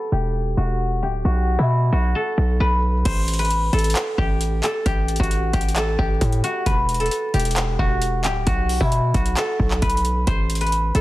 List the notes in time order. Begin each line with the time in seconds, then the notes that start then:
Already playing: F#4 A4 B4
0.12 E1 G4
0.57 E1 F#4
1.02 D1 G4
1.25 B1 F#4
1.59 B2 E4
1.92 B1 F#4
2.15 A4
2.38 B1
2.60 B1 B4
3.05 A1 C5, kick, closed hi-hat, crash
3.28 closed hi-hat
3.34 closed hi-hat
3.39 B4, closed hi-hat
3.45 closed hi-hat
3.51 closed hi-hat
3.73 A1 A4, closed hi-hat
3.79 closed hi-hat
3.84 closed hi-hat
3.90 closed hi-hat
3.95 clap, closed hi-hat
4.18 A1 G4, kick
4.41 closed hi-hat
4.63 A4, clap, closed hi-hat
4.86 A1 G4, kick, closed hi-hat
5.08 closed hi-hat
5.16 A1 F#4, kick, closed hi-hat
5.24 closed hi-hat
5.31 closed hi-hat
5.53 A1 G4, kick, closed hi-hat
5.61 closed hi-hat
5.69 closed hi-hat
5.76 A4, clap, closed hi-hat
5.99 A1 G4, kick
6.21 A2, kick, closed hi-hat
6.32 closed hi-hat
6.44 F#4, closed hi-hat
6.66 E1 B4, kick, closed hi-hat
6.89 closed hi-hat
6.94 closed hi-hat
7.00 A4, closed hi-hat
7.06 closed hi-hat
7.11 closed hi-hat
7.34 E1 G4, closed hi-hat
7.40 closed hi-hat
7.45 closed hi-hat
7.51 closed hi-hat
7.56 clap, closed hi-hat
7.79 E1 F#4, kick
8.02 closed hi-hat
8.24 D1 G4, clap, closed hi-hat
8.47 B1 F#4, kick, closed hi-hat
8.69 open hi-hat
8.81 B2 E4, kick
8.92 closed hi-hat
9.14 B1 F#4, kick, closed hi-hat
9.26 closed hi-hat
9.37 A4, clap, closed hi-hat
9.60 B1, kick
9.71 clap
9.82 B1 B4, kick, closed hi-hat
9.90 closed hi-hat
9.97 closed hi-hat
10.05 closed hi-hat
10.27 A1 C5, kick, closed hi-hat
10.50 closed hi-hat
10.55 closed hi-hat
10.61 B4, closed hi-hat
10.67 closed hi-hat
10.72 closed hi-hat
10.95 A1 A4, closed hi-hat